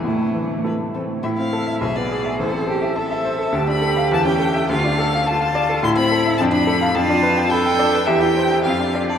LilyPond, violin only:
\new Staff \with { instrumentName = "Violin" } { \time 2/4 \key a \minor \tempo 4 = 104 e'4 b'8 a'8 | e''16 f''8. e''16 d''8. | c''4 e''16 e''8. | a''16 b''8. a''16 g''8. |
f''4 a''16 a''8. | \key g \mixolydian c'''16 b''8. a''16 b''8. | a''4 g''4 | e''16 g''8. f''8. d''16 | }